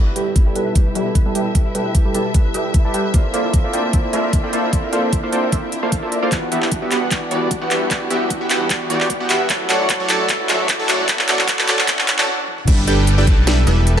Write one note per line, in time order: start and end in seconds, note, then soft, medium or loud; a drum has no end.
0.00 0.54 G1 medium
0.00 3.11 B2 medium
0.00 0.14 G3 medium
0.00 0.26 E4 medium
0.00 0.22 F#4 medium
0.00 0.14 G4 medium
0.00 0.14 A4 medium
0.00 1.96 A4 medium
0.00 0.14 B4 medium
0.00 0.14 E5 medium
0.00 6.28 E5 medium
0.07 0.55 B4 medium
0.16 0.44 G3 medium
0.16 0.75 G4 medium
0.16 0.44 G4 medium
0.16 0.44 A4 medium
0.16 0.44 B4 medium
0.16 0.44 G5 loud
0.16 closed hi-hat medium
0.26 0.35 E4 medium
0.36 0.46 E4 medium
0.36 kick medium
0.36 closed hi-hat medium
0.46 0.54 G3 medium
0.46 0.86 E4 medium
0.46 0.54 G4 medium
0.46 0.54 A4 medium
0.46 0.54 B4 medium
0.46 0.54 G5 medium
0.56 0.94 B1 medium
0.56 0.73 G3 medium
0.56 0.73 G4 medium
0.56 0.73 A4 medium
0.56 0.66 B4 medium
0.56 0.73 B4 medium
0.56 0.73 A5 loud
0.56 closed hi-hat medium
0.66 1.15 B4 medium
0.75 0.93 G3 medium
0.75 1.35 G4 medium
0.75 0.93 G4 medium
0.75 0.93 A4 medium
0.75 0.93 E5 medium
0.75 kick medium
0.75 closed hi-hat medium
0.86 0.95 E4 medium
0.95 1.76 E1 medium
0.95 1.23 G3 medium
0.95 1.06 E4 loud
0.95 1.23 G4 medium
0.95 1.23 A4 medium
0.95 1.23 B4 medium
0.95 1.23 E5 medium
0.95 closed hi-hat medium
1.06 1.45 E4 medium
1.15 1.25 B4 medium
1.15 kick medium
1.15 closed hi-hat medium
1.26 1.33 G3 loud
1.26 1.33 G4 medium
1.26 1.33 A4 medium
1.26 1.33 B4 medium
1.26 1.74 B4 medium
1.26 1.33 A5 loud
1.35 1.53 G3 loud
1.35 1.94 G4 medium
1.35 1.53 G4 medium
1.35 1.53 A4 medium
1.35 1.53 B4 medium
1.35 1.53 G5 loud
1.35 closed hi-hat medium
1.46 1.54 E4 medium
1.55 1.65 E4 loud
1.55 1.73 E5 medium
1.55 kick medium
1.55 closed hi-hat medium
1.65 2.05 E4 medium
1.75 2.13 D2 medium
1.75 2.03 G3 medium
1.75 2.03 G4 medium
1.75 2.03 A4 medium
1.75 1.85 B4 medium
1.75 2.03 B4 medium
1.75 2.03 G5 loud
1.75 closed hi-hat medium
1.85 2.34 B4 medium
1.95 2.54 G4 medium
1.95 kick medium
1.95 closed hi-hat medium
2.05 2.13 G3 medium
2.05 2.14 E4 medium
2.05 2.13 G4 medium
2.05 2.13 A4 medium
2.05 2.13 B4 medium
2.05 2.13 G5 medium
2.14 2.53 B1 medium
2.14 2.32 G3 medium
2.14 2.25 E4 medium
2.14 2.32 G4 medium
2.14 2.32 A4 medium
2.14 2.32 B4 medium
2.14 2.32 A5 loud
2.14 closed hi-hat medium
2.25 2.64 E4 medium
2.34 2.52 G3 medium
2.34 2.52 G4 medium
2.34 2.52 A4 medium
2.34 2.44 B4 medium
2.34 2.52 B4 medium
2.34 2.52 E5 medium
2.34 kick loud
2.34 closed hi-hat medium
2.45 2.93 B4 medium
2.54 2.82 G3 medium
2.54 4.90 G4 medium
2.54 2.82 G4 medium
2.54 2.82 A4 medium
2.54 2.82 B4 medium
2.54 2.82 E5 medium
2.54 closed hi-hat medium
2.65 2.74 E4 medium
2.74 2.84 E4 medium
2.74 kick medium
2.74 closed hi-hat medium
2.85 2.92 G3 loud
2.85 3.20 E4 loud
2.85 2.92 G4 medium
2.85 2.92 A4 medium
2.85 2.92 B4 medium
2.85 2.92 A5 loud
2.94 3.12 G3 medium
2.94 3.12 G4 medium
2.94 3.12 A4 medium
2.94 3.04 B4 medium
2.94 3.12 B4 medium
2.94 3.12 G5 loud
2.94 closed hi-hat medium
3.04 3.60 B4 medium
3.14 3.72 A#1 medium
3.14 3.32 A#3 medium
3.14 6.29 C4 medium
3.14 12.64 D4 medium
3.14 3.30 F4 medium
3.14 3.32 F4 medium
3.14 3.32 A4 medium
3.14 3.32 C5 medium
3.14 3.32 D5 medium
3.14 3.32 E5 medium
3.14 kick loud
3.14 closed hi-hat medium
3.24 3.33 E4 medium
3.34 3.62 A#3 medium
3.34 3.44 E4 loud
3.34 3.62 F4 medium
3.34 3.62 A4 medium
3.34 3.62 C5 medium
3.34 3.62 D5 medium
3.34 3.62 F5 loud
3.34 closed hi-hat medium
3.44 3.79 E4 medium
3.54 3.64 A#4 medium
3.54 kick medium
3.54 closed hi-hat medium
3.64 3.72 A#3 medium
3.64 3.72 F4 medium
3.64 3.72 A4 medium
3.64 4.13 A#4 medium
3.64 3.72 C5 medium
3.64 3.72 D5 medium
3.64 3.72 F5 medium
3.73 4.12 D2 medium
3.73 3.91 A#3 loud
3.73 3.90 F4 medium
3.73 3.91 F4 medium
3.73 3.91 A4 medium
3.73 3.91 C5 medium
3.73 3.91 D5 medium
3.73 3.91 G5 loud
3.73 closed hi-hat medium
3.84 3.93 E4 medium
3.93 4.11 A#3 medium
3.93 4.03 E4 medium
3.93 4.11 F4 medium
3.93 4.11 A4 medium
3.93 4.11 C5 medium
3.93 4.11 D5 medium
3.93 4.11 E5 medium
3.93 kick medium
3.93 closed hi-hat medium
4.04 4.39 E4 loud
4.13 4.92 F1 medium
4.13 4.41 A#3 medium
4.13 4.41 F4 medium
4.13 4.41 A4 medium
4.13 4.23 A#4 medium
4.13 4.41 C5 medium
4.13 4.41 D5 medium
4.13 4.41 E5 loud
4.13 closed hi-hat medium
4.24 4.72 A#4 medium
4.33 kick loud
4.33 closed hi-hat medium
4.43 4.51 A#3 loud
4.43 4.52 E4 medium
4.43 4.51 F4 medium
4.43 4.51 A4 medium
4.43 4.51 C5 medium
4.43 4.51 D5 medium
4.43 4.51 G5 loud
4.53 4.71 A#3 loud
4.53 4.63 E4 loud
4.53 4.71 F4 medium
4.53 4.71 A4 medium
4.53 4.71 C5 medium
4.53 4.71 D5 medium
4.53 4.71 F5 loud
4.53 closed hi-hat medium
4.63 4.99 E4 loud
4.73 4.91 A#3 medium
4.73 4.91 F4 medium
4.73 4.91 A4 medium
4.73 4.83 A#4 medium
4.73 4.91 C5 medium
4.73 4.91 D5 medium
4.73 4.91 E5 medium
4.73 kick medium
4.73 closed hi-hat medium
4.83 5.32 A#4 medium
4.93 5.31 F1 medium
4.93 5.21 A#3 loud
4.93 5.09 F4 medium
4.93 5.21 F4 medium
4.93 5.21 A4 medium
4.93 5.21 C5 medium
4.93 5.21 D5 medium
4.93 5.21 F5 loud
4.93 closed hi-hat medium
5.03 5.12 E4 medium
5.13 5.23 E4 medium
5.13 kick medium
5.13 closed hi-hat medium
5.23 5.31 A#3 medium
5.23 5.58 E4 loud
5.23 5.31 F4 medium
5.23 5.31 A4 medium
5.23 5.31 C5 medium
5.23 5.31 D5 medium
5.23 5.31 F5 loud
5.32 5.94 D2 medium
5.32 5.50 A#3 loud
5.32 5.50 F4 medium
5.32 5.50 A4 medium
5.32 5.43 A#4 medium
5.32 5.50 C5 medium
5.32 5.50 D5 medium
5.32 5.50 G5 loud
5.32 closed hi-hat medium
5.43 5.98 A#4 medium
5.52 5.70 A#3 medium
5.52 5.69 F4 medium
5.52 5.70 F4 medium
5.52 5.70 A4 medium
5.52 5.70 C5 medium
5.52 5.70 D5 medium
5.52 5.70 E5 medium
5.52 kick loud
5.52 closed hi-hat medium
5.63 5.72 E4 medium
5.72 6.02 E4 loud
5.72 closed hi-hat medium
5.83 5.94 A#3 medium
5.83 5.94 F4 medium
5.83 5.94 A4 medium
5.83 6.38 C5 medium
5.83 5.94 C5 medium
5.83 5.94 D5 medium
5.83 5.94 F5 medium
5.92 6.31 F1 loud
5.92 6.18 A4 medium
5.92 kick loud
5.92 closed hi-hat medium
6.03 6.20 A#3 medium
6.03 6.62 E4 medium
6.03 6.20 F4 medium
6.03 6.20 A4 medium
6.03 6.20 C5 medium
6.03 6.20 D5 medium
6.03 6.20 E5 medium
6.12 6.38 A#4 medium
6.12 closed hi-hat medium
6.22 6.30 A#3 medium
6.22 6.30 F4 medium
6.22 6.30 A4 medium
6.22 6.30 C5 medium
6.22 8.07 D5 medium
6.22 6.30 D5 medium
6.22 6.30 F5 medium
6.32 6.90 E1 medium
6.32 6.49 E3 medium
6.32 9.47 G3 medium
6.32 9.47 F#4 medium
6.32 6.42 B4 medium
6.32 kick medium
6.32 clap soft
6.32 closed hi-hat medium
6.32 riser medium
6.42 6.71 B4 medium
6.52 6.80 E3 loud
6.52 6.80 B3 medium
6.52 7.11 F#4 medium
6.52 6.80 F#4 medium
6.52 6.80 G4 medium
6.52 6.80 E5 loud
6.52 closed hi-hat medium
6.62 6.81 E4 medium
6.62 clap soft
6.71 6.91 B4 medium
6.71 kick medium
6.71 closed hi-hat medium
6.82 6.90 E3 medium
6.82 6.90 B3 medium
6.82 7.21 E4 loud
6.82 6.90 F#4 medium
6.82 6.90 G4 medium
6.82 6.90 E5 loud
6.91 7.30 G1 medium
6.91 7.09 E3 loud
6.91 7.09 B3 medium
6.91 7.09 F#4 medium
6.91 7.09 G4 medium
6.91 7.01 B4 medium
6.91 7.09 F#5 loud
6.91 clap medium
6.91 closed hi-hat medium
7.02 7.31 B4 medium
7.11 7.29 E3 medium
7.11 7.29 B3 medium
7.11 7.70 F#4 medium
7.11 7.29 F#4 medium
7.11 7.29 G4 medium
7.11 7.29 D5 medium
7.11 kick loud
7.11 clap medium
7.11 closed hi-hat medium
7.22 7.41 E4 medium
7.31 8.12 D1 loud
7.31 7.59 E3 medium
7.31 7.59 B3 medium
7.31 7.59 F#4 medium
7.31 7.59 G4 medium
7.31 7.51 B4 medium
7.31 7.59 D5 medium
7.31 closed hi-hat medium
7.42 7.81 E4 loud
7.51 7.61 B4 medium
7.51 kick loud
7.51 closed hi-hat medium
7.61 7.69 E3 loud
7.61 7.69 B3 medium
7.61 7.69 F#4 medium
7.61 7.69 G4 medium
7.61 7.90 B4 medium
7.61 7.69 F#5 loud
7.71 7.89 E3 loud
7.71 7.89 B3 medium
7.71 8.30 F#4 medium
7.71 7.89 F#4 medium
7.71 7.89 G4 medium
7.71 7.89 E5 loud
7.71 clap medium
7.71 closed hi-hat medium
7.81 8.01 E4 medium
7.91 8.08 E3 medium
7.91 8.08 B3 medium
7.91 8.08 F#4 medium
7.91 8.08 G4 medium
7.91 8.10 B4 medium
7.91 8.08 D5 medium
7.91 kick medium
7.91 clap medium
7.91 closed hi-hat medium
8.01 8.41 E4 medium
8.10 8.49 B1 medium
8.10 8.38 E3 loud
8.10 8.38 B3 medium
8.10 8.38 F#4 medium
8.10 8.38 G4 medium
8.10 8.21 B4 medium
8.10 8.38 E5 loud
8.10 closed hi-hat medium
8.21 8.50 B4 medium
8.30 8.90 F#4 medium
8.30 kick medium
8.30 closed hi-hat medium
8.41 8.49 E3 medium
8.41 8.49 B3 medium
8.41 8.60 E4 medium
8.41 8.49 F#4 medium
8.41 8.49 G4 medium
8.41 8.49 E5 loud
8.50 8.89 G1 medium
8.50 8.68 E3 loud
8.50 8.68 B3 medium
8.50 8.68 F#4 medium
8.50 8.68 G4 medium
8.50 8.70 B4 medium
8.50 8.68 F#5 loud
8.50 clap medium
8.50 closed hi-hat medium
8.61 9.00 E4 medium
8.70 8.88 E3 medium
8.70 8.88 B3 medium
8.70 8.88 F#4 medium
8.70 8.88 G4 medium
8.70 8.88 D5 medium
8.70 kick loud
8.70 clap medium
8.70 closed hi-hat medium
8.81 9.10 B4 medium
8.90 9.18 E3 medium
8.90 9.18 B3 medium
8.90 9.49 F#4 medium
8.90 9.18 F#4 medium
8.90 9.18 G4 medium
8.90 9.18 D5 medium
8.90 closed hi-hat medium
9.00 9.20 E4 medium
9.00 clap medium
9.10 9.30 B4 medium
9.10 kick loud
9.10 closed hi-hat medium
9.20 9.28 E3 loud
9.20 9.28 B3 medium
9.20 9.60 E4 loud
9.20 9.28 F#4 medium
9.20 9.28 G4 loud
9.20 9.28 F#5 loud
9.30 9.47 E3 medium
9.30 9.47 B3 medium
9.30 9.47 F#4 medium
9.30 9.47 G4 medium
9.30 9.40 B4 medium
9.30 9.47 E5 loud
9.30 clap medium
9.30 closed hi-hat medium
9.40 9.69 B4 medium
9.49 10.08 F#1 medium
9.49 9.67 F#3 medium
9.49 12.64 A3 medium
9.49 12.64 C#4 medium
9.49 12.64 E4 medium
9.49 9.67 F#4 medium
9.49 10.09 F#4 medium
9.49 9.67 A4 medium
9.49 9.67 C#5 medium
9.49 9.67 D5 medium
9.49 9.67 E5 medium
9.49 kick medium
9.49 clap medium
9.49 closed hi-hat medium
9.60 9.80 E4 medium
9.69 9.97 F#3 loud
9.69 9.97 F#4 medium
9.69 9.97 A4 medium
9.69 9.89 B4 medium
9.69 9.97 C#5 medium
9.69 9.97 D5 medium
9.69 9.97 F#5 loud
9.69 clap medium
9.69 closed hi-hat medium
9.80 10.20 E4 loud
9.89 kick loud
9.89 clap medium
9.89 closed hi-hat medium
10.00 10.08 F#3 medium
10.00 10.08 F#4 medium
10.00 10.08 A4 medium
10.00 10.29 B4 medium
10.00 10.08 C#5 medium
10.00 10.08 D5 medium
10.00 10.08 F#5 loud
10.09 10.48 A1 medium
10.09 10.27 F#3 loud
10.09 10.27 F#4 medium
10.09 10.68 F#4 medium
10.09 10.27 A4 medium
10.09 10.27 C#5 medium
10.09 10.27 D5 medium
10.09 10.27 A5 loud
10.09 clap medium
10.09 closed hi-hat medium
10.20 10.39 E4 medium
10.29 10.49 B4 medium
10.29 kick medium
10.29 clap medium
10.29 closed hi-hat medium
10.40 10.79 E4 loud
10.49 11.30 E1 loud
10.49 10.77 F#3 medium
10.49 10.77 F#4 medium
10.49 10.77 A4 medium
10.49 10.59 B4 medium
10.49 10.77 C#5 medium
10.49 10.77 D5 medium
10.49 10.77 E5 loud
10.49 clap medium
10.49 closed hi-hat medium
10.60 10.88 B4 medium
10.69 kick loud
10.69 clap medium
10.69 closed hi-hat medium
10.79 10.87 F#3 loud
10.79 10.99 E4 medium
10.79 10.87 F#4 medium
10.79 10.87 A4 medium
10.79 10.87 C#5 loud
10.79 10.87 D5 medium
10.79 10.87 A5 loud
10.89 11.06 F#3 loud
10.89 11.06 F#4 medium
10.89 11.06 A4 medium
10.89 11.08 B4 medium
10.89 11.06 C#5 medium
10.89 11.06 D5 medium
10.89 11.06 F#5 loud
10.89 clap medium
10.89 closed hi-hat medium
10.99 11.39 E4 loud
11.09 11.19 B4 medium
11.09 kick loud
11.09 clap medium
11.09 closed hi-hat medium
11.19 11.48 B4 medium
11.19 clap medium
11.28 11.67 C#2 medium
11.28 11.56 F#3 medium
11.28 11.56 F#4 medium
11.28 11.88 F#4 medium
11.28 11.56 A4 medium
11.28 11.56 C#5 medium
11.28 11.56 D5 medium
11.28 11.56 F#5 loud
11.28 clap loud
11.28 closed hi-hat medium
11.39 11.59 E4 medium
11.39 clap medium
11.48 11.68 B4 medium
11.48 kick loud
11.48 clap loud
11.48 closed hi-hat medium
11.59 11.67 F#3 medium
11.59 11.98 E4 loud
11.59 11.67 F#4 medium
11.59 11.67 A4 medium
11.59 11.67 C#5 medium
11.59 11.67 D5 medium
11.59 11.67 F#5 loud
11.59 clap medium
11.68 12.07 A1 medium
11.68 11.86 F#3 loud
11.68 11.86 F#4 medium
11.68 11.86 A4 medium
11.68 11.78 B4 medium
11.68 11.86 C#5 medium
11.68 11.86 D5 medium
11.68 11.86 A5 loud
11.68 clap loud
11.68 closed hi-hat medium
11.79 12.67 B4 medium
11.79 clap medium
11.88 12.06 F#3 medium
11.88 12.06 F#4 medium
11.88 12.08 F#4 medium
11.88 12.06 A4 medium
11.88 12.06 C#5 medium
11.88 12.06 D5 medium
11.88 kick loud
11.88 clap loud
11.88 closed hi-hat medium
11.99 12.98 E4 medium
11.99 clap medium
12.08 12.18 F#4 medium
12.08 clap loud
12.08 closed hi-hat medium
12.18 12.28 F#3 medium
12.18 12.94 F#4 medium
12.18 12.28 F#4 medium
12.18 12.28 A4 medium
12.18 12.28 C#5 medium
12.18 12.28 D5 medium
12.18 12.28 F#5 medium
12.18 clap medium
12.48 high tom medium
12.58 mid tom medium
12.68 13.26 G1 medium
12.68 12.85 G3 medium
12.68 12.84 D4 medium
12.68 12.85 G4 medium
12.68 12.85 A4 medium
12.68 12.78 B4 medium
12.68 12.85 B4 medium
12.68 12.84 D5 loud
12.68 12.85 E5 medium
12.68 kick loud
12.68 closed hi-hat medium
12.68 crash loud
12.68 downlifter medium
12.78 13.07 B4 medium
12.87 13.15 G3 loud
12.87 13.11 D4 medium
12.87 13.15 G4 medium
12.87 13.47 G4 medium
12.87 13.15 A4 medium
12.87 13.15 B4 medium
12.87 13.11 D5 medium
12.87 13.15 G5 loud
12.87 closed hi-hat medium
12.98 13.18 E4 medium
13.07 13.27 B4 medium
13.07 closed hi-hat medium
13.18 13.26 G3 medium
13.18 13.41 D4 medium
13.18 13.57 E4 loud
13.18 13.26 G4 medium
13.18 13.26 A4 medium
13.18 13.26 B4 medium
13.18 13.41 D5 loud
13.18 13.26 G5 loud
13.27 13.66 B1 medium
13.27 13.45 G3 loud
13.27 13.45 G4 medium
13.27 13.45 A4 medium
13.27 13.45 B4 medium
13.27 13.37 B4 medium
13.27 13.45 A5 loud
13.27 kick loud
13.27 closed hi-hat medium
13.38 13.67 B4 medium
13.47 13.65 G3 medium
13.47 13.71 D4 medium
13.47 14.00 G4 medium
13.47 13.65 G4 medium
13.47 13.65 A4 medium
13.47 13.65 B4 medium
13.47 13.71 D5 loud
13.47 13.65 E5 medium
13.47 snare loud
13.47 closed hi-hat medium
13.58 13.77 E4 medium
13.67 14.00 E1 loud
13.67 13.95 G3 medium
13.67 13.95 G4 medium
13.67 13.95 A4 medium
13.67 13.95 B4 medium
13.67 13.86 B4 medium
13.67 13.95 E5 medium
13.67 closed hi-hat medium
13.78 14.00 E4 loud
13.87 13.97 B4 medium
13.87 closed hi-hat medium